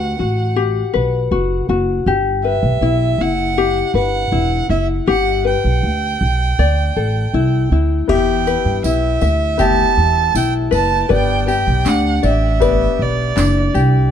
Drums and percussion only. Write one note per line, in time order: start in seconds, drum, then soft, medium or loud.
8.09 kick loud
8.09 crash medium
8.47 tambourine soft
8.84 tambourine medium
9.21 tambourine soft
9.59 kick medium
9.59 tambourine soft
10.35 tambourine medium
10.73 tambourine soft
11.10 kick loud
11.10 tambourine soft
11.48 tambourine soft
11.86 clap loud
11.86 tambourine medium
12.23 tambourine soft
12.61 kick medium
12.61 tambourine medium
13.37 clap loud
13.37 tambourine medium
13.75 tambourine soft